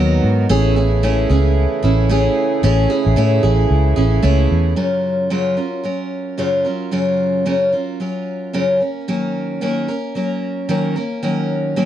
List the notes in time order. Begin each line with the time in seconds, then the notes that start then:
Already playing: D#2 D#3 F#3 B3 D#4 F#4 A#4
0.24 G#2
0.49 A1 C#3 E3 A3 C#4 E4 G#4
0.76 C#4 E4 G#4
1.03 A3 C#4 E4 G#4
1.30 C#2 C#4 E4 G#4
1.83 A1 C#4 E4 G#4
2.09 A3 C#4 E4 G#4
2.63 A1 A3 C#4 E4 G#4
2.90 C#4 E4 G#4
3.06 A1
3.16 A2 A3 C#4 E4 G#4
3.43 A1 C#4 E4 G#4
3.71 C#2
3.96 A1 C#4 E4 G#4
4.22 C#2 A3 C#4 E4 G#4
4.51 E2
4.76 F#2 C#3 F#3 C#4 F4 A#4
5.30 F#2 C#3 F#3 C#4 F4 A#4
5.57 F#3 C#4 F4 A#4
5.84 F#3 C#4 F4 A#4
6.38 F#2 C#3 F#3 C#4 F4 A#4
6.65 F#3 C#4 F4 A#4
6.91 F#2 C#3 F#3 C#4 F4 A#4
7.46 F#2 C#3 F#3 C#4 F4 A#4
7.72 F#3 C#4 F4 A#4
8.00 F#3 C#4 F4 A#4
8.53 F#2 C#3 F#3 C#4 F4 A#4
8.80 A#3 C#4 A#4
9.08 D#3 F#3 A#3 C#4 A#4
9.61 D#3 F#3 A#3 C#4 A#4
9.88 A#3 C#4 A#4
10.15 F#3 A#3 C#4 A#4
10.69 D#3 F#3 A#3 C#4 A#4
10.96 A#3 C#4 A#4
11.23 D#3 F#3 A#3 C#4 A#4
11.76 D#3 F#3 A#3 C#4 A#4